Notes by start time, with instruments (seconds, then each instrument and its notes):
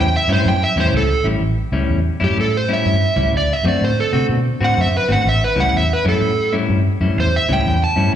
Already playing: fingered electric bass E2
0.00 electric slide guitar G5
0.16 electric slide guitar E5
0.28 fingered electric bass G2, clean electric guitar A2 G3 C#4 E4
0.32 electric slide guitar C5
0.45 fingered electric bass F#2, electric slide guitar G5
0.64 electric slide guitar E5
0.76 fingered electric bass E2, clean electric guitar A2 G3 C#4 E4
0.80 electric slide guitar C5
0.93 fingered electric bass C#2
0.97 electric slide guitar A4
1.24 fingered electric bass A1, clean electric guitar A2 G3 C#4 E4
1.41 fingered electric bass A1
1.72 fingered electric bass C#2, clean electric guitar A2 G3 C#4 E4
1.89 fingered electric bass E2
2.20 fingered electric bass F#2, clean electric guitar A2 G3 C#4 E4
2.24 electric slide guitar G4
2.37 fingered electric bass A2, electric slide guitar A4
2.57 electric slide guitar C5
2.69 clean electric guitar A2 G3 C#4 E4
2.73 electric slide guitar E5
2.85 fingered electric bass G2
3.16 fingered electric bass C#2, clean electric guitar A2 G3 C#4 E4
3.33 fingered electric bass D2, electric slide guitar D5
3.53 electric slide guitar E5
3.63 fingered electric bass F#2, clean electric guitar D3 A3 C4 F#4
3.68 electric slide guitar D5
3.81 fingered electric bass A2, electric slide guitar C5
4.00 electric slide guitar A4
4.13 fingered electric bass C3, clean electric guitar D3 A3 C4 F#4
4.29 fingered electric bass B2
4.60 fingered electric bass A2, clean electric guitar D3 A3 C4 F#4, electric slide guitar F#5
4.77 fingered electric bass F#2, electric slide guitar E5
4.97 electric slide guitar B4
5.08 fingered electric bass G#1, clean electric guitar D3 A3 C4 F#4, electric slide guitar F#5
5.25 fingered electric bass A1, electric slide guitar E5
5.44 electric slide guitar B4
5.56 fingered electric bass C#2, clean electric guitar A2 G3 C#4 E4
5.60 electric slide guitar F#5
5.73 fingered electric bass E2, electric slide guitar E5
5.93 electric slide guitar B4
6.05 fingered electric bass F#2, clean electric guitar A2 G3 C#4 E4, electric slide guitar A4
6.21 fingered electric bass A2
6.53 clean electric guitar A2 G3 C#4 E4
6.69 fingered electric bass G2
7.00 fingered electric bass F#2, clean electric guitar A2 G3 C#4 E4
7.17 fingered electric bass E2, electric slide guitar C5
7.36 electric slide guitar E5
7.49 fingered electric bass C#2, clean electric guitar A2 G3 C#4 E4, electric slide guitar G5
7.66 fingered electric bass E2
7.84 electric slide guitar A5
7.96 fingered electric bass G2, clean electric guitar A2 G3 C#4 E4